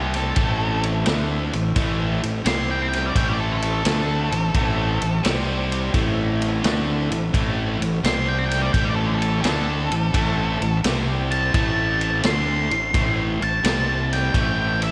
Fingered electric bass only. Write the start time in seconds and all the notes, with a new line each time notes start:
Already playing: C2
0.37 A1
1.07 D2
1.54 A1
1.76 A1
2.24 A1
2.46 C2
3.15 A1
3.85 D2
4.32 A1
4.55 A1
5.02 A1
5.25 C2
5.94 A1
6.64 D2
7.11 A1
7.34 A1
7.80 A1
8.04 C2
8.74 A1
9.44 D2
9.91 A1
10.14 A1
10.61 A1
10.85 C2
11.54 A1
12.24 D2
12.71 A1
12.94 A1
13.41 A1
13.64 C2
14.34 A1